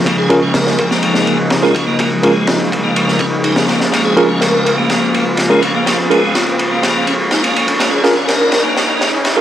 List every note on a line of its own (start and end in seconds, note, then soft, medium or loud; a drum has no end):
0.00 9.41 C#3 medium
0.00 9.41 F3 medium
0.00 9.41 G#3 medium
0.00 9.41 A#3 medium
0.00 riser medium
0.06 0.71 A#1 medium
0.06 0.16 A#3 medium
0.06 3.92 D#4 medium
0.06 kick loud
0.06 ride medium
0.18 0.29 G#4 medium
0.29 0.39 C#4 medium
0.29 0.39 F4 medium
0.29 0.39 G#4 medium
0.29 0.36 G#4 medium
0.29 0.39 A#4 loud
0.29 kick medium
0.29 ride medium
0.43 0.53 C#4 medium
0.54 0.89 A#4 medium
0.54 snare loud
0.54 ride medium
0.67 snare soft
0.78 1.27 F1 medium
0.78 kick loud
0.78 ride medium
0.91 1.38 A#3 medium
0.91 snare soft
1.03 ride medium
1.14 snare soft
1.27 1.92 A#1 medium
1.27 ride medium
1.50 snare loud
1.50 ride medium
1.63 1.75 G#3 medium
1.63 1.72 C#4 medium
1.63 1.72 F4 medium
1.63 1.72 G#4 medium
1.63 1.72 A#4 medium
1.63 snare soft
1.75 1.85 C#4 medium
1.75 kick medium
1.75 ride medium
1.87 1.98 A#3 medium
1.99 2.65 A#1 medium
1.99 2.09 A#3 medium
1.99 kick loud
1.99 ride medium
2.23 2.47 G#3 medium
2.23 2.32 C#4 medium
2.23 2.32 F4 medium
2.23 2.32 G#4 medium
2.23 2.32 A#4 medium
2.23 kick loud
2.23 ride medium
2.47 2.58 F4 medium
2.47 snare loud
2.47 ride medium
2.60 ride soft
2.72 3.13 F1 medium
2.72 kick medium
2.72 ride medium
2.84 3.19 A#3 medium
2.96 ride medium
3.08 snare soft
3.19 3.26 C#4 medium
3.19 kick medium
3.19 ride medium
3.32 3.44 F1 medium
3.44 3.85 A#1 medium
3.44 3.56 D#4 medium
3.44 ride medium
3.56 3.67 A#3 medium
3.56 snare loud
3.68 3.80 A#3 medium
3.68 snare soft
3.68 ride medium
3.81 snare medium
3.92 4.58 A#1 medium
3.92 4.03 A#3 medium
3.92 7.78 F4 medium
3.92 snare soft
3.92 ride medium
4.05 4.16 G#4 medium
4.17 4.26 C#4 medium
4.17 4.26 F4 medium
4.17 4.26 G#4 medium
4.17 4.23 G#4 medium
4.17 4.26 A#4 loud
4.17 ride medium
4.29 4.40 C#4 medium
4.41 4.76 A#4 medium
4.41 snare soft
4.41 ride loud
4.65 5.13 F1 medium
4.65 ride medium
4.78 5.25 A#3 medium
4.90 snare soft
4.90 ride medium
5.13 5.79 A#1 medium
5.13 ride medium
5.37 snare medium
5.37 ride medium
5.50 5.62 G#3 medium
5.50 5.59 C#4 medium
5.50 5.59 F4 medium
5.50 5.59 G#4 medium
5.50 5.59 A#4 medium
5.62 5.73 C#4 medium
5.62 ride medium
5.75 5.85 A#3 medium
5.86 6.52 A#1 medium
5.86 5.97 A#3 medium
5.86 snare medium
5.86 ride medium
6.10 6.34 G#3 medium
6.10 6.20 C#4 medium
6.10 6.19 F4 medium
6.10 6.20 G#4 medium
6.10 6.20 A#4 medium
6.10 ride medium
6.35 6.45 F4 medium
6.35 snare medium
6.35 ride medium
6.46 ride soft
6.59 7.00 F1 medium
6.59 ride medium
6.71 7.06 A#3 medium
6.83 snare medium
6.83 ride medium
7.07 7.13 C#4 medium
7.07 ride medium
7.31 7.43 D#4 medium
7.31 snare medium
7.31 ride medium
7.43 7.54 A#3 medium
7.43 ride medium
7.55 7.67 A#3 medium
7.55 ride medium
7.68 ride medium
7.79 8.45 A#1 medium
7.79 7.90 A#3 medium
7.79 9.41 C#4 medium
7.79 snare medium
7.79 ride medium
7.91 8.03 G#4 medium
8.04 8.13 C#4 medium
8.04 8.13 F4 medium
8.04 8.10 G#4 medium
8.04 8.13 G#4 medium
8.04 8.13 A#4 loud
8.04 snare medium
8.04 ride medium
8.16 8.27 C#4 medium
8.27 8.63 A#4 loud
8.27 snare medium
8.27 ride medium
8.52 9.00 F1 medium
8.52 snare medium
8.52 ride medium
8.64 9.11 A#3 medium
8.77 snare medium
8.77 ride medium
9.00 9.41 A#1 medium
9.00 snare medium
9.00 ride medium
9.25 snare medium
9.25 ride medium
9.37 9.41 G#3 medium
9.37 9.41 C#4 medium
9.37 9.41 F4 medium
9.37 9.41 G#4 medium
9.37 9.41 A#4 loud